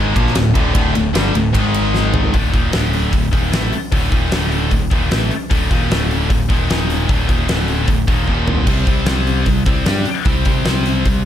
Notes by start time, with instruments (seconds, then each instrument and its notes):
Already playing: picked electric bass G#1, distorted electric guitar G#2 D#3 G#3
0.15 picked electric bass A#1, distorted electric guitar A#2 F3 A#3, kick, ride
0.27 snare
0.35 picked electric bass D1, distorted electric guitar D2 A2, snare, ride
0.55 picked electric bass D1, distorted electric guitar D2 A2 D3, kick, ride
0.74 picked electric bass D1, distorted electric guitar D2 A2 D3, kick, ride
0.94 picked electric bass D1, distorted electric guitar D2 A2, ride
1.14 picked electric bass G1, distorted electric guitar G2 D3 G3, snare, ride
1.34 picked electric bass D1, distorted electric guitar D2 A2, ride
1.53 picked electric bass G#1, distorted electric guitar G#2 D#3 G#3, kick, ride
1.74 ride
1.94 snare
2.14 floor tom
2.33 picked electric bass D1, distorted electric guitar D2 A2 D3, kick, open hi-hat
2.52 picked electric bass D#1, distorted electric guitar D#2 A#2 D#3, kick, open hi-hat
2.72 picked electric bass D1, distorted electric guitar D2 A2 D3, snare, open hi-hat
2.93 open hi-hat
3.12 picked electric bass D1, distorted electric guitar D2 A2, kick, open hi-hat
3.31 picked electric bass D#1, distorted electric guitar D#2 A#2 D#3, kick, open hi-hat
3.51 picked electric bass A1, distorted electric guitar A2 E3 A3, snare, open hi-hat
3.72 muted distorted electric guitar stroke, muted picked electric bass stroke, open hi-hat
3.92 picked electric bass D1, distorted electric guitar D2 A2 D3, kick, open hi-hat
4.11 picked electric bass D#1, distorted electric guitar D#2 A#2 D#3, kick, open hi-hat
4.31 picked electric bass D1, distorted electric guitar D2 A2 D3, snare, open hi-hat
4.52 open hi-hat
4.71 picked electric bass D1, distorted electric guitar D2 A2, kick, open hi-hat
4.90 picked electric bass D#1, distorted electric guitar D#2 A#2 D#3, kick, open hi-hat
5.11 picked electric bass A1, distorted electric guitar A2 E3 A3, snare, open hi-hat
5.31 muted picked electric bass stroke, muted distorted electric guitar stroke, open hi-hat
5.50 picked electric bass D1, distorted electric guitar D2 A2 D3, kick, open hi-hat
5.71 picked electric bass D#1, distorted electric guitar D#2 A#2 D#3, kick, open hi-hat
5.90 picked electric bass D1, distorted electric guitar D2 A2 D3, snare, open hi-hat
6.11 open hi-hat
6.29 picked electric bass D1, distorted electric guitar D2 A2, kick, open hi-hat
6.49 picked electric bass D#1, distorted electric guitar D#2 A#2 D#3, kick, open hi-hat
6.68 picked electric bass D#1, distorted electric guitar D#2 A#2 D#3, snare, open hi-hat
6.90 open hi-hat
7.07 picked electric bass D1, distorted electric guitar D2 A2 D3, kick, open hi-hat
7.27 picked electric bass D#1, distorted electric guitar D#2 A#2 D#3, kick, open hi-hat
7.47 picked electric bass D1, distorted electric guitar D2 A2 D3, snare, open hi-hat
7.68 open hi-hat
7.88 picked electric bass D1, distorted electric guitar D2 A2, kick, open hi-hat
8.08 picked electric bass D#1, distorted electric guitar D#2 A#2 D#3, kick, open hi-hat
8.27 picked electric bass D#1, distorted electric guitar D#2 A#2 D#3, kick
8.48 floor tom
8.67 picked electric bass C2, distorted electric guitar C3 G3 C4, kick, open hi-hat, crash
8.87 picked electric bass C2, distorted electric guitar C3 G3 C4, kick, open hi-hat
9.05 picked electric bass C2, distorted electric guitar C3 G3 C4, snare, open hi-hat
9.27 open hi-hat
9.46 picked electric bass C2, distorted electric guitar C3 G3, kick, open hi-hat
9.66 picked electric bass C2, distorted electric guitar C3 G3 C4, kick, open hi-hat
9.86 picked electric bass G2, distorted electric guitar G3 D4 G4, snare, open hi-hat
10.05 muted picked electric bass stroke, muted distorted electric guitar stroke, open hi-hat
10.25 picked electric bass C2, distorted electric guitar C3 G3 C4, kick, open hi-hat
10.45 picked electric bass C2, distorted electric guitar C3 G3 C4, kick, open hi-hat
10.65 picked electric bass C2, distorted electric guitar C3 G3 C4, snare, open hi-hat
10.86 open hi-hat
11.06 picked electric bass C2, distorted electric guitar C3 G3, kick, open hi-hat